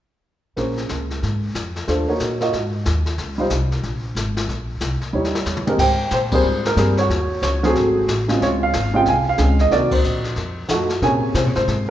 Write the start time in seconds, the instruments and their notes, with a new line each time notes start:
0.57 upright bass A#1, grand piano A#3 C#4 G#4 C5, brush sweep, snare
0.77 snare
0.89 upright bass C#2, snare, hi-hat pedal
1.10 snare
1.22 upright bass G#2, brush sweep, snare
1.55 upright bass F2, snare, hi-hat pedal
1.76 snare
1.88 upright bass D#2, grand piano A3 D4 F4 C5, brush sweep, snare
2.08 grand piano A#3 D#4 F#4 C#5
2.20 upright bass A#2, snare, hi-hat pedal
2.40 grand piano A#3 F4 F#4 D#5, snare
2.53 upright bass G#2, brush sweep, snare
2.85 upright bass D#2, snare, hi-hat pedal
3.06 snare
3.18 upright bass C#2, brush sweep, snare
3.38 grand piano G3 D#4 F4 C5
3.50 upright bass C2, snare, hi-hat pedal
3.72 snare
3.83 upright bass A#1, brush sweep, snare
4.15 upright bass G#1, snare, hi-hat pedal
4.37 snare
4.48 upright bass A#1, brush sweep, snare
4.81 upright bass C2, snare, hi-hat pedal
5.01 muted upright bass stroke, snare
5.13 upright bass D#2, grand piano G3 D#4 E4 C#5
5.24 snare
5.35 snare
5.46 upright bass E2, snare, hi-hat pedal
5.57 mid tom
5.67 grand piano G#3 C4 G4 A#4, mid tom
5.78 upright bass G#2, grand piano C5 G5, brush sweep, kick, snare, crash
6.11 upright bass A#2, grand piano C5, snare, hi-hat pedal
6.32 grand piano G3 A#3 C4 G#4 C5, kick, ride
6.43 upright bass G#2, brush sweep
6.65 grand piano A#4, snare
6.76 upright bass G2, grand piano G3 A#3 C4 G#4, snare, hi-hat pedal
6.97 grand piano F#4 C#5, snare
7.09 upright bass D#2, brush sweep, snare
7.42 upright bass C#2, grand piano C#5, snare, hi-hat pedal
7.63 grand piano F#3 A3 C4 F#4 G#4 C5, snare
7.74 upright bass G#1, brush sweep, snare
8.08 upright bass A1, snare, hi-hat pedal
8.28 grand piano C#3 G#3 C4 F4, snare
8.41 upright bass C#2, grand piano F4 C#5, brush sweep, snare
8.63 grand piano F5
8.73 upright bass G#1, snare, hi-hat pedal
8.94 grand piano C#3 G#3 C4 F4 G5
9.05 upright bass C2, grand piano G#5, brush sweep, snare
9.10 grand piano F5
9.29 grand piano F5
9.38 upright bass C#2, grand piano C#3 G#3 C4 G#4, snare, hi-hat pedal
9.59 grand piano D#5, snare
9.70 upright bass C2, grand piano D#3 A#3 C4 F#4 A#4 D5, brush sweep, snare
9.91 grand piano D#4 C5, muted upright bass stroke, kick, ride
10.04 upright bass A#1, hi-hat pedal
10.24 snare
10.36 upright bass F2, brush sweep, snare
10.68 upright bass F#2, grand piano F3 A3 D#4 F#4, snare, hi-hat pedal
10.89 snare
11.02 upright bass A#2, grand piano C3 C#3 A#3 G#4 C#5 G#5, brush sweep, snare
11.34 upright bass C3, grand piano C5, snare, hi-hat pedal
11.46 upright bass A#2
11.55 upright bass G#2, grand piano C5, snare
11.67 upright bass G#2, brush sweep, snare